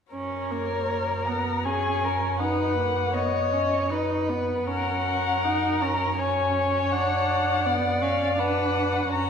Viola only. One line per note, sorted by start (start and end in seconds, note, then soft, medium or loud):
0.14 0.53 C#4 soft
0.51 0.89 A#3 soft
0.89 1.29 A#3 soft
1.27 1.67 B3 soft
1.65 2.41 C#4 soft
2.39 2.76 D#4 soft
2.77 3.16 A#3 soft
3.14 3.54 B3 soft
3.52 3.92 C#4 soft
3.90 4.31 D#4 soft
4.29 4.69 B3 soft
4.67 5.46 C#4 soft
5.44 5.83 D#4 soft
5.81 6.18 C#4 medium
6.19 6.94 C#4 soft
6.92 7.67 D4 soft
7.66 8.03 B3 medium
8.02 8.38 C#4 soft
8.39 9.10 D4 soft
9.10 9.30 C#4 medium